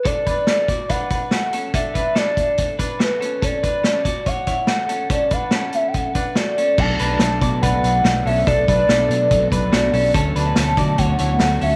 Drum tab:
CC |--------|--------|--------|--------|
HH |xxxxxxxx|xxxxxxxx|xxxxxxxx|xxxxxxxx|
SD |--o---o-|--o---o-|--o---o-|--o---o-|
BD |oo-ooo--|oo-ooo--|oo-ooo--|oo--oo--|

CC |x-------|--------|--------|
HH |-xxxxxxo|xxxxxxxo|xxxxxxxo|
SD |--o---o-|--o---o-|--o---o-|
BD |o--oo---|oo--oo--|o--oo---|